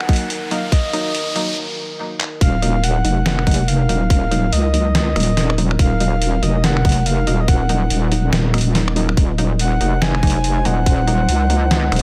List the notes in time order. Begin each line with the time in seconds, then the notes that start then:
Already playing: D#4 A#4 F#5, riser
0.01 finger snap
0.09 F#3 A#3 D#4, kick, closed hi-hat
0.13 closed hi-hat
0.16 closed hi-hat
0.30 closed hi-hat
0.51 F#3 A#3 D#4 F5, closed hi-hat
0.72 D#5, kick, closed hi-hat
0.93 F#3 A#3 D#4, closed hi-hat
1.15 closed hi-hat
1.35 F#3 A#3 D#4, closed hi-hat
2.20 clap
2.41 D#1 D#4 A#4 F5, kick, closed hi-hat
2.62 F#3 A#3 D#4, closed hi-hat
2.84 F#5, closed hi-hat
3.04 F1 F#3 A#3 D#4, closed hi-hat
3.26 F#5, snare, closed hi-hat
3.39 finger snap
3.47 F#3 A#3 D#4, kick, closed hi-hat
3.51 closed hi-hat
3.54 closed hi-hat
3.68 F5, closed hi-hat
3.89 D#1 F#3 A#3 D#4, closed hi-hat
4.10 F5, kick, closed hi-hat
4.31 F#3 A#3 D#4, closed hi-hat
4.52 C#2 D#5, closed hi-hat
4.73 F#3 A#3 D#4, closed hi-hat
4.95 D#5, snare, closed hi-hat
5.16 D#1 F#3 A#3 D#4, finger snap, closed hi-hat
5.20 closed hi-hat
5.23 closed hi-hat
5.37 snare, closed hi-hat
5.50 finger snap
5.58 F#3 A#3 D#4, closed hi-hat
5.71 finger snap
5.79 D#1 F5, kick, closed hi-hat
6.00 F#3 A#3 D#4, closed hi-hat
6.22 closed hi-hat
6.43 F1 F#3 A#3 D#4 D#5, closed hi-hat
6.64 F#5, snare, closed hi-hat
6.77 finger snap
6.85 F#3 A#3 D#4, kick, closed hi-hat
6.89 closed hi-hat
6.92 closed hi-hat
7.06 F5, closed hi-hat
7.27 D#1 F#3 A#3 D#4, closed hi-hat
7.40 D#5
7.48 F#5, kick, closed hi-hat
7.69 F#3 A#3 D#4, closed hi-hat
7.90 D#1, closed hi-hat
8.12 F#3 A#3 D#4, closed hi-hat
8.33 D#1, snare, closed hi-hat
8.54 F#3 A#3 D#4, finger snap, closed hi-hat
8.58 closed hi-hat
8.61 closed hi-hat
8.75 snare, closed hi-hat
8.88 finger snap
8.96 F#3 A#3 D#4, closed hi-hat
9.09 finger snap
9.17 D#1 C5, kick, closed hi-hat
9.38 F#3 A#3 D#4, closed hi-hat
9.59 F#5, closed hi-hat
9.81 F1 F#3 A#3 D#4, closed hi-hat
10.02 G#5, snare, closed hi-hat
10.15 finger snap
10.23 F#3 A#3 D#4, kick, closed hi-hat
10.27 closed hi-hat
10.30 closed hi-hat
10.44 closed hi-hat
10.65 D#1 F#3 A#3 D#4 F#5, closed hi-hat
10.86 kick, closed hi-hat
11.07 F#3 A#3 D#4, closed hi-hat
11.29 C#2, closed hi-hat
11.50 F#3 A#3 D#4, closed hi-hat
11.71 snare, closed hi-hat
11.92 D#1 F#3 A#3 D#4, finger snap, closed hi-hat
11.96 closed hi-hat